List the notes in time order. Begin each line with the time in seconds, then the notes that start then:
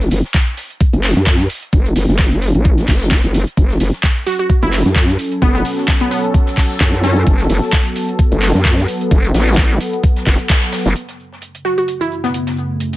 0.00 snare, closed hi-hat
0.11 F#1, open hi-hat, shaker
0.24 snare
0.34 kick, snare, clap, closed hi-hat, shaker
0.47 closed hi-hat
0.57 snare, open hi-hat, shaker
0.70 closed hi-hat
0.80 kick, closed hi-hat, shaker
0.93 F#1, closed hi-hat
1.03 clap, open hi-hat, shaker
1.16 F#2, snare, closed hi-hat
1.26 kick, snare, clap, closed hi-hat, shaker
1.39 snare, closed hi-hat
1.50 open hi-hat, shaker
1.63 closed hi-hat
1.73 F#1, kick, closed hi-hat, shaker
1.85 closed hi-hat
1.96 F#1, open hi-hat, shaker
2.08 F#1, snare
2.19 kick, snare, clap, closed hi-hat, shaker
2.32 closed hi-hat
2.42 open hi-hat, shaker
2.55 A1, closed hi-hat
2.65 kick, closed hi-hat, shaker
2.78 snare, closed hi-hat
2.88 F#1, kick, clap, open hi-hat
3.01 snare, closed hi-hat
3.11 kick, snare, clap, closed hi-hat, shaker
3.24 F#1, closed hi-hat
3.34 snare, open hi-hat, shaker
3.47 closed hi-hat
3.57 F#1 F#3 C#4 A4, kick, closed hi-hat, shaker
3.70 snare, closed hi-hat
3.80 F#1, open hi-hat, shaker
3.93 snare
4.03 kick, snare, clap, closed hi-hat, shaker
4.16 closed hi-hat
4.26 F#4, snare, open hi-hat, shaker
4.39 F#4, closed hi-hat
4.49 kick, closed hi-hat, shaker
4.62 F#1 E4, closed hi-hat
4.73 clap, open hi-hat, shaker
4.86 F#2, snare, closed hi-hat
4.96 kick, snare, clap, closed hi-hat, shaker
5.08 snare, closed hi-hat
5.19 open hi-hat, shaker
5.32 closed hi-hat
5.42 F#1 B3, kick, closed hi-hat, shaker
5.55 B3, closed hi-hat
5.65 open hi-hat, shaker
5.78 snare
5.88 kick, snare, clap, closed hi-hat, shaker
6.01 B3, closed hi-hat
6.11 B3, open hi-hat, shaker
6.24 closed hi-hat
6.34 kick, closed hi-hat, shaker
6.47 snare, closed hi-hat
6.57 kick, clap, open hi-hat
6.70 snare, closed hi-hat
6.80 F#2, kick, snare, clap, closed hi-hat, shaker
6.93 closed hi-hat
7.03 C#4, snare, open hi-hat, shaker
7.16 closed hi-hat
7.27 F#1 B3, kick, closed hi-hat, shaker
7.39 snare, closed hi-hat
7.50 F#1, open hi-hat, shaker
7.62 snare
7.73 kick, snare, clap, closed hi-hat, shaker
7.85 closed hi-hat
7.95 snare, open hi-hat, shaker
8.09 closed hi-hat
8.19 kick, closed hi-hat, shaker
8.32 F#1, closed hi-hat
8.42 clap, open hi-hat, shaker
8.55 F#2, snare, closed hi-hat
8.65 kick, snare, clap, closed hi-hat, shaker
8.78 snare, closed hi-hat
8.88 open hi-hat, shaker
9.01 closed hi-hat
9.11 F#1, kick, closed hi-hat, shaker
9.24 closed hi-hat
9.34 A1, snare, open hi-hat, shaker
9.40 snare, shaker
9.47 snare, closed hi-hat, shaker
9.52 snare, shaker
9.57 kick, snare, clap, closed hi-hat
9.70 closed hi-hat
9.80 open hi-hat, shaker
9.93 closed hi-hat
10.04 kick, closed hi-hat, shaker
10.16 snare, closed hi-hat
10.26 F#1, kick, snare, clap, open hi-hat, shaker
10.39 closed hi-hat
10.49 kick, snare, clap, closed hi-hat, shaker
10.62 snare, closed hi-hat
10.73 snare, open hi-hat, shaker
10.85 F#1, snare, closed hi-hat, shaker
10.96 F#2 C#3 A3, closed hi-hat, shaker
11.08 snare, closed hi-hat
11.20 shaker
11.32 snare
11.41 closed hi-hat, shaker
11.55 closed hi-hat
11.65 F#4, snare, shaker
11.78 F#4, closed hi-hat
11.88 closed hi-hat, shaker
12.01 E4, closed hi-hat
12.11 shaker
12.24 B3, snare, closed hi-hat
12.34 closed hi-hat, shaker
12.47 snare, closed hi-hat
12.57 shaker
12.80 closed hi-hat, shaker
12.93 closed hi-hat